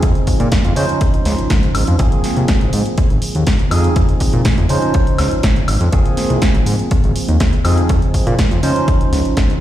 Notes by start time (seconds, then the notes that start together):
Already playing: F3 C4 D#4 G#4
0.03 F2, kick, closed hi-hat
0.15 closed hi-hat
0.27 kick, open hi-hat
0.40 A#2, closed hi-hat
0.52 kick, snare, closed hi-hat
0.65 F2, closed hi-hat
0.75 C#3 F3 C#4 D#4 C5, open hi-hat
0.89 closed hi-hat
1.01 kick, closed hi-hat
1.14 closed hi-hat
1.25 C#2, snare, open hi-hat
1.39 G#1, closed hi-hat
1.50 G#1, kick, snare, closed hi-hat
1.63 closed hi-hat
1.75 G#1, open hi-hat, high woodblock
1.87 F2, closed hi-hat
1.98 G#1 F3 A#3 C4 G#4, kick, closed hi-hat
2.12 closed hi-hat
2.24 snare, open hi-hat
2.37 C2, closed hi-hat
2.48 kick, snare, closed hi-hat
2.61 G#1, closed hi-hat
2.73 G#2, open hi-hat
2.86 closed hi-hat
2.98 G#1, kick, closed hi-hat
3.10 G#1, closed hi-hat
3.22 open hi-hat
3.35 D#2, closed hi-hat
3.47 kick, snare, closed hi-hat
3.59 closed hi-hat
3.70 F2 F3 C4 D#4 G#4, open hi-hat, high woodblock
3.84 closed hi-hat
3.96 F2, kick, closed hi-hat
4.09 closed hi-hat
4.20 kick, open hi-hat
4.33 A#2, closed hi-hat
4.45 kick, snare, closed hi-hat
4.58 F2, closed hi-hat
4.69 C#3 F3 C#4 D#4 C5, open hi-hat
4.82 closed hi-hat
4.94 kick, closed hi-hat
5.07 closed hi-hat
5.18 C#2, snare, open hi-hat, high woodblock
5.31 G#1, closed hi-hat
5.43 G#1, kick, snare, closed hi-hat
5.56 closed hi-hat
5.68 G#1, open hi-hat, high woodblock
5.81 F2, closed hi-hat
5.92 G#1 F3 A#3 C4 G#4, kick, closed hi-hat
6.06 closed hi-hat
6.17 snare, open hi-hat
6.30 C2, closed hi-hat
6.42 kick, snare, closed hi-hat
6.54 G#1, closed hi-hat
6.66 G#2, open hi-hat
6.79 closed hi-hat
6.91 G#1, kick, closed hi-hat
7.04 G#1, closed hi-hat
7.16 open hi-hat
7.28 D#2, closed hi-hat
7.40 kick, snare, closed hi-hat
7.53 closed hi-hat
7.64 F2 F3 C4 D#4 G#4, open hi-hat, high woodblock
7.78 closed hi-hat
7.89 F2, kick, closed hi-hat
8.02 closed hi-hat
8.14 kick, open hi-hat
8.27 A#2, closed hi-hat
8.39 kick, snare, closed hi-hat
8.51 F2, closed hi-hat
8.63 C#3 F3 C#4 D#4 C5, open hi-hat
8.76 closed hi-hat
8.88 kick, closed hi-hat
9.01 closed hi-hat
9.12 C#2, snare, open hi-hat
9.25 G#1, closed hi-hat
9.37 G#1, kick, snare, closed hi-hat
9.50 closed hi-hat